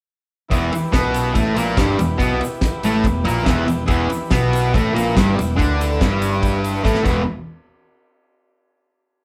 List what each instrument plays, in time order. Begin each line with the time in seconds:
0.49 picked electric bass E1, distorted electric guitar E2 E3, transistor combo organ E4 G4 B4, kick, ride
0.53 shaker
0.72 muted distorted electric guitar stroke, muted picked electric bass stroke, ride, shaker
0.85 shaker
0.92 picked electric bass B1, distorted electric guitar B2 B3, kick, snare, ride, shaker
1.14 ride, shaker
1.34 picked electric bass A1, distorted electric guitar A2 A3, kick, ride, shaker
1.55 picked electric bass A#1, distorted electric guitar A#2 A#3, ride, shaker
1.77 picked electric bass G1, distorted electric guitar G2 G3, kick, snare, ride, shaker
1.99 picked electric bass E1, distorted electric guitar E2, ride, shaker
2.17 picked electric bass B1, distorted electric guitar B2 B3, kick, ride, shaker
2.40 muted distorted electric guitar stroke, muted picked electric bass stroke, ride, shaker
2.55 shaker
2.61 kick, snare, ride, shaker
2.83 picked electric bass A1, distorted electric guitar A2 A3, ride, shaker
3.04 picked electric bass E1, distorted electric guitar E2, kick, ride, shaker
3.24 picked electric bass A#1, distorted electric guitar A#2 A#3, ride
3.28 shaker
3.44 picked electric bass E1, distorted electric guitar E2 E3, kick, snare, ride
3.49 shaker
3.66 picked electric bass E1, distorted electric guitar E2, ride, shaker
3.87 picked electric bass E1, distorted electric guitar E2 E3, transistor combo organ E4 G4 B4, kick, ride, shaker
4.10 muted distorted electric guitar stroke, ride, shaker
4.25 shaker
4.31 picked electric bass B1, distorted electric guitar B2 B3, kick, snare, ride, shaker
4.53 ride, shaker
4.74 picked electric bass A1, distorted electric guitar A2 A3, kick, ride, shaker
4.93 picked electric bass A#1, distorted electric guitar A#2 A#3, ride
4.98 shaker
5.15 picked electric bass G1, distorted electric guitar G2 G3, kick, snare, ride, shaker
5.36 picked electric bass E1, distorted electric guitar E2, ride
5.41 shaker
5.56 picked electric bass D2, distorted electric guitar D3 D4, kick, ride
5.61 shaker
5.81 ride, shaker
6.00 picked electric bass G1, distorted electric guitar G2 G3, kick, snare, ride, shaker
6.22 ride, shaker
6.33 shaker
6.43 kick, ride, shaker
6.64 ride, shaker
6.83 picked electric bass A1, distorted electric guitar A2 A3, kick, snare, shaker
6.94 snare
7.03 picked electric bass E1, distorted electric guitar E2 B2 E3, transistor combo organ E4 G4 B4, kick, crash, shaker